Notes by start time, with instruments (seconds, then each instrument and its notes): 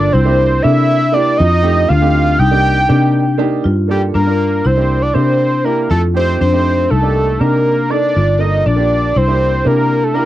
Already playing: fingered electric bass G1, analog synth lead D5
0.13 fingered electric bass C2, marimba E4, analog synth lead C5
0.25 grand piano A#3 D4 E4 G4
0.62 fingered electric bass C3, grand piano A#3 D4 E4 A4, marimba D4, analog synth lead E5
1.12 grand piano A#3 D4 E4 G4, marimba E4, analog synth lead D5
1.37 fingered electric bass F2, marimba F4, analog synth lead D#5
1.62 grand piano A3 C4 D#4 G4
1.89 fingered electric bass D2, marimba D4, analog synth lead F5
2.01 grand piano A3 C4 D#4 G4
2.39 fingered electric bass C2, marimba D#4, analog synth lead G5
2.51 grand piano A#3 D4 D#4 G4
2.88 fingered electric bass C3, grand piano A#3 D4 D#4 G4, marimba D4
3.38 grand piano A#3 D4 D#4 G4, marimba D#4
3.64 fingered electric bass G2, marimba F4
3.88 grand piano A#3 D4 F4 A4, analog synth lead G4
4.14 fingered electric bass G2, marimba D4, analog synth lead A#4
4.27 grand piano A#3 D4 F4 A#4
4.65 fingered electric bass C2, marimba E4, analog synth lead C5
4.77 grand piano A#3 D4 E4 G4
5.02 analog synth lead D5
5.14 fingered electric bass C3, grand piano A#3 D4 E4 G4, marimba D4, analog synth lead C5
5.64 grand piano A#3 D4 E4 G4, marimba E4, analog synth lead A#4
5.90 fingered electric bass F2, marimba F4, analog synth lead A4
6.14 grand piano A3 C4 D#4 G4, analog synth lead C5
6.41 fingered electric bass F2, marimba D4, analog synth lead C5
6.51 grand piano A3 C4 D#4 G4
6.90 fingered electric bass C2, marimba D#4, analog synth lead A4
7.02 grand piano A#3 D4 D#4 G4
7.39 fingered electric bass C3, grand piano A#3 D4 D#4 G4, marimba D4, analog synth lead A#4
7.89 grand piano A#3 D4 D#4 A4, marimba D#4, analog synth lead D5
8.16 fingered electric bass G1, marimba F4
8.38 grand piano A#3 D4 F4 A4, analog synth lead D#5
8.66 fingered electric bass A#1, marimba D4, analog synth lead D5
8.76 grand piano A#3 D4 F4 G4
9.16 fingered electric bass C2, marimba E4, analog synth lead C5
9.27 grand piano A#3 D4 E4 G4
9.64 fingered electric bass C3, grand piano A#3 D4 E4 G4, marimba D4, analog synth lead A#4
10.04 analog synth lead A4
10.14 grand piano A#3 D4 E4 G4, marimba E4, analog synth lead A#4